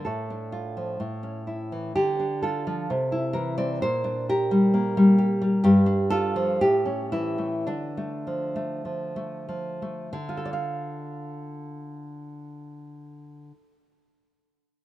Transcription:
\new Staff \with { instrumentName = "Nylon-string guitar" } { \time 2/4 \key d \minor \tempo 4 = 60 << { a'4 r4 | g'8 a'4 bes'16 d''16 | c''8 bes'4. | g'8 a'8 g'8 e'8 |
d'4 r4 | <d f' a' d'' f''>2~ | <d f' a' d'' f''>2 | } \\ { a,16 d'16 f'16 f16 a,16 cis'16 e'16 e16 | d16 d'16 f'16 f16 c16 e'16 e16 c'16 | bes,16 d'16 g'16 g16 bes16 g16 g'16 g16 | g,16 d'16 f'16 f16 a,16 cis'16 e16 a16 |
d16 a16 f16 a16 f16 a16 f16 a16 | r2 | r2 | } >> }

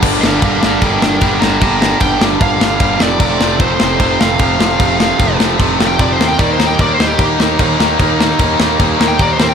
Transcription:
<<
  \new Staff \with { instrumentName = "Lead electric guitar" } { \time 4/4 \key g \minor \tempo 4 = 151 r8 <d'' f''>8 <d'' f''>8 <d'' f''>8 <bes' g''>8 <bes' g''>8 <bes' g''>8 <g'' bes''>8 | <g'' bes''>8 <g'' bes''>8 g''8 r8 f''4. d''8~ | d''4 c''4. f''4.~ | f''4. r8 \tuplet 3/2 { r4 g''8 d''8 c''8 g''8 } |
\tuplet 3/2 { d''8 c''8 g''8 d''8 c''8 g'8 } r2 | r2 \tuplet 3/2 { r4 g''8 d''8 c''8 g''8 } | }
  \new Staff \with { instrumentName = "Overdriven electric guitar" } { \clef bass \time 4/4 \key g \minor <g, d g bes d'>8 <g, d g bes d'>8 <g, d g bes d'>8 <g, d g bes d'>8 <g, d g bes d'>8 <g, d g bes d'>8 <g, d g bes d'>8 <g, d g bes d'>8 | <g, d g bes d'>8 <g, d g bes d'>8 <g, d g bes d'>8 <g, d g bes d'>8 <g, d g bes d'>8 <g, d g bes d'>8 <g, d g bes d'>8 <f, c f a c'>8 | <f, c f a c'>8 <f, c f a c'>8 <f, c f a c'>8 <f, c f a c'>8 <f, c f a c'>8 <f, c f a c'>8 <f, c f a c'>8 <f, c f a c'>8 | <f, c f a c'>8 <f, c f a c'>8 <f, c f a c'>8 <f, c f a c'>8 <f, c f a c'>8 <f, c f a c'>8 <f, c f a c'>8 <f, c f a c'>8 |
<ees g bes ees'>8 <ees g bes ees'>8 <ees g bes ees'>8 <ees g bes ees'>8 <ees g bes ees'>8 <ees g bes ees'>8 <ees g bes ees'>8 <ees g bes ees'>8 | <ees g bes ees'>8 <ees g bes ees'>8 <ees g bes ees'>8 <ees g bes ees'>8 <ees g bes ees'>8 <ees g bes ees'>8 <ees g bes ees'>8 <ees g c' ees'>8 | }
  \new Staff \with { instrumentName = "Overdriven electric guitar" } { \clef bass \time 4/4 \key g \minor <g, d g>8 <g, d g>8 <g, d g>8 <g, d g>8 <g, d g>8 <g, d g>8 <g, d g>8 <g, d g>8 | <g, d g>8 <g, d g>8 <g, d g>8 <g, d g>8 <g, d g>8 <g, d g>8 <g, d g>8 <f, c f>8 | <f, c f>8 <f, c f>8 <f, c f>8 <f, c f>8 <f, c f>8 <f, c f>8 <f, c f>8 <f, c f>8 | <f, c f>8 <f, c f>8 <f, c f>8 <f, c f>8 <f, c f>8 <f, c f>8 <f, c f>8 <f, c f>8 |
<ees bes ees'>8 <ees bes ees'>8 <ees bes ees'>8 <ees bes ees'>8 <ees bes ees'>8 <ees bes ees'>8 <ees bes ees'>8 <ees bes ees'>8 | <ees bes ees'>8 <ees bes ees'>8 <ees bes ees'>8 <ees bes ees'>8 <ees bes ees'>8 <ees bes ees'>8 <ees bes ees'>8 <c g c'>8 | }
  \new Staff \with { instrumentName = "Picked electric bass" } { \clef bass \time 4/4 \key g \minor g,,8 g,,8 g,,8 g,,8 g,,8 g,,8 g,,8 g,,8 | g,,4 g,,8 g,,8 g,,8 g,,8 g,,8 f,,8 | f,,8 f,,8 f,,8 f,,8 f,,8 f,,8 f,,8 f,,8 | f,,4 f,,8 f,,8 f,,8 f,,8 f,,8 ees,8 |
ees,8 ees,8 ees,8 ees,8 ees,8 ees,8 ees,8 ees,8 | ees,4 ees,8 ees,8 ees,8 ees,8 ees,8 ees,8 | }
  \new DrumStaff \with { instrumentName = "Drums" } \drummode { \time 4/4 <cymc bd>8 sn8 <cymc bd>8 sn8 <cymc bd>8 sn8 <cymc bd>8 sn8 | <cymc bd>8 sn8 <cymc bd>8 sn8 <cymc bd>8 sn8 <cymc bd>8 sn8 | <cymc bd>8 sn8 <cymc bd>8 sn8 <cymc bd>8 sn8 <cymc bd>8 sn8 | <cymc bd>8 sn8 <cymc bd>8 sn8 <cymc bd>8 sn8 <cymc bd>8 sn8 |
<cymc bd>8 sn8 <cymc bd>8 sn8 <cymc bd>8 sn8 <cymc bd>8 sn8 | <cymc bd>8 sn8 <cymc bd>8 sn8 <cymc bd>8 sn8 <cymc bd>8 sn8 | }
>>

